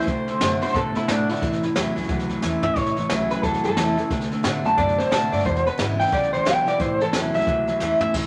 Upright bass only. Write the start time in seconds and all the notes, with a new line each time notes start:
0.07 D2
0.41 F#2
0.75 A2
0.96 B2
1.09 A2
1.42 A1
1.76 E2
1.97 C#2
2.09 C#2
2.43 E2
2.64 D2
2.76 A1
3.10 C#2
3.43 E2
3.64 G2
3.78 E2
4.11 D2
4.45 A2
4.65 F#2
4.78 F#2
5.12 A2
5.32 G2
5.45 E1
5.79 G#1
6.13 B1
6.32 D2
6.47 B1
6.80 A1
7.14 E2
7.35 C#2
7.47 C#2
7.81 E2
8.02 D2
8.14 A1